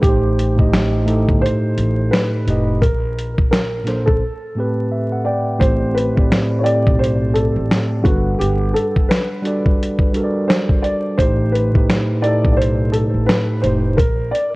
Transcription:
0.02 A1 A2 A3 G4, kick, closed hi-hat
0.06 D#4 G4 C5
0.39 closed hi-hat
0.55 A2 A3 D#4 G4, kick
0.60 D#5
0.74 finger snap, snare, closed hi-hat
1.05 A2 A3 D#4 G4, closed hi-hat
1.10 A4
1.29 G1, kick
1.41 C5
1.46 closed hi-hat
1.78 A1, closed hi-hat
2.11 B4, finger snap, snare, closed hi-hat
2.45 F1 A2 A3 D#4 G4, closed hi-hat
2.50 D#5
2.81 A#1 A#4, kick, closed hi-hat
3.18 closed hi-hat
3.38 kick
3.51 A#4, finger snap, snare, closed hi-hat
3.83 A#2 A#3 D4 A4, closed hi-hat
3.88 C5, snare
4.06 A#1 A4, kick
4.55 A2 A3 C4 G4
4.60 B4
4.91 E5
5.12 F#5
5.25 D5 G5
5.59 A1 A2 A3 C4 G4 C5, kick, closed hi-hat
5.64 C5
5.94 B4, closed hi-hat
6.14 A2 A3 C4 G4, kick
6.19 D5
6.32 finger snap, snare, closed hi-hat
6.58 A2 A3 C#5
6.63 C4 G4 D5, closed hi-hat
6.87 B1, kick
6.99 C5
7.04 closed hi-hat
7.34 A4, closed hi-hat
7.56 A1
7.71 finger snap, snare, closed hi-hat
8.02 G1 G3 D4 F#4 A4 F#5, kick, closed hi-hat
8.07 B4
8.39 G1 G4, closed hi-hat
8.74 A4, closed hi-hat
8.96 kick
9.09 B4, finger snap, snare, closed hi-hat
9.42 G3 D4 F#4 A4, closed hi-hat
9.47 D5
9.66 kick
9.83 closed hi-hat
9.99 kick
10.13 G3 D4 F#4 A4, closed hi-hat
10.17 A#4
10.24 D5
10.48 C5, finger snap, snare, closed hi-hat
10.69 kick
10.83 D5, closed hi-hat
11.18 A1 A2 A3 D#4 C5, kick, closed hi-hat
11.22 G4 C5
11.52 B4, closed hi-hat
11.73 A2 A3 D#4 G4, kick
11.78 B4
11.90 finger snap, snare, closed hi-hat
12.22 A2 A3 D#4 G4 D5, closed hi-hat
12.27 A4
12.45 B1, kick
12.52 D5
12.57 C5
12.62 closed hi-hat
12.92 A4, closed hi-hat
13.14 A1
13.26 B4, finger snap, snare
13.31 closed hi-hat
13.62 F1 A2 A3 D#4 C5, closed hi-hat
13.66 G4 C5
13.97 A#1 A#4, kick, closed hi-hat
14.31 D5, closed hi-hat

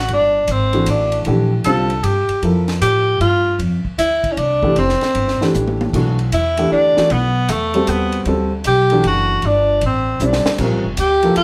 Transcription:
0.08 G1, ride
0.13 D4
0.48 G#1 C4, hi-hat pedal, ride
0.73 E3 A3 D4 F#4, ride
0.86 A1 D4, hi-hat pedal, ride
1.12 ride
1.25 A#1 E3 A3 D4 G4, ride
1.64 C2 D3 G3 C4 F4 A4, hi-hat pedal, ride
1.90 ride
2.03 G2 G4, ride
2.29 muted upright bass stroke, ride
2.42 F2 F3 E4 A4 A#4, ride
2.68 snare, ride
2.81 A2 G4, hi-hat pedal, ride
3.20 G2 F4, ride
3.59 F2, ride
3.85 muted upright bass stroke, kick
3.98 D2 E4, hi-hat pedal, ride
4.24 kick, ride
4.32 C#4
4.37 C2 D4, ride
4.63 E3 A3 D4 G4, kick
4.76 F1 C4, ride
4.89 snare
5.01 snare, ride
5.15 G1, ride
5.28 snare
5.41 E3 A3 D4 G4, muted upright bass stroke, snare
5.54 A1, hi-hat pedal, high tom
5.67 high tom
5.81 high tom
5.93 B1 E3 A3 D4 F#4, kick, crash
6.19 ride
6.32 E2 E4, hi-hat pedal, ride
6.57 E3 A3 D4 G4, ride
6.71 D2 D4
6.96 E3 A3 D4 F#4, muted upright bass stroke, snare
7.10 B1 B3, ride
7.49 E2 A3, hi-hat pedal, ride
7.74 G3 C4 F#4 A4, ride
7.87 D#2 B3, hi-hat pedal, ride
8.12 ride
8.25 D2 G3 C4 F#4 A4, ride
8.64 B1 G4, hi-hat pedal, ride
8.90 E3 A3 D4 F#4, ride
9.04 F#1 F#4, ride
9.42 G1, ride
9.46 D4
9.81 A1, ride
9.86 C4
10.20 B1 D3 G3 C4 E4, hi-hat pedal
10.24 D4
10.33 snare
10.45 muted upright bass stroke, snare
10.58 A#1 G3 C4 F4 A#4, kick, crash
10.72 A1
10.85 F1
10.97 D2 G4, hi-hat pedal, ride
11.22 F3 A#3 E4 A4, ride
11.36 E2 F4, ride

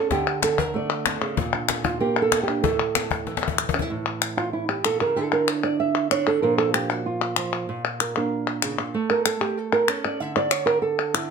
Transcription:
Already playing: A4 C#5
0.11 D3 G4, cajon bass, cajon slap
0.42 A4, cajon slap, clap
0.59 A#4, cajon bass
0.74 A3 D5
1.06 D3, cajon slap, clap
1.21 C#3
1.37 A#2 F4, cajon bass
1.54 D4
1.69 cajon slap, clap
1.84 F4, cajon bass
2.00 A#3 G4
2.22 A4
2.32 cajon slap, clap
2.43 G4
2.49 D4
2.63 A2 A4, cajon bass
2.95 cajon slap, clap
3.11 cajon bass
3.27 E3, cajon slap
3.37 cajon slap
3.48 cajon bass
3.58 clap
3.69 cajon bass
3.74 C#4
3.79 E4, cajon bass
3.90 A2
4.22 clap
4.37 F4, clap
4.53 E4
4.69 G4
4.84 A#2 A4, clap
5.01 C#3 A#4
5.16 D3 D4 E4 A4
5.33 A#4
5.48 C#5, clap
5.63 D5, clap
5.80 E5
6.11 D4 C#5, clap
6.27 A4
6.42 A#2 F3 A#3 D4 A#4
6.58 A4
6.74 G4, clap
6.90 F#4, clap
7.06 F4
7.36 F3, clap
7.69 A#2
8.00 A#4, clap
8.16 A#3 D4 A#4
8.62 C#3, clap
8.78 A#2, clap
8.94 A3
9.10 A#4
9.26 A4, clap
9.41 G4
9.57 A4
9.73 A#4
9.88 C#4 C#5, clap
10.05 D5
10.20 D3 E5
10.36 D5
10.51 C#5, clap
10.66 A#4
10.82 A4
11.14 D3 E4, clap

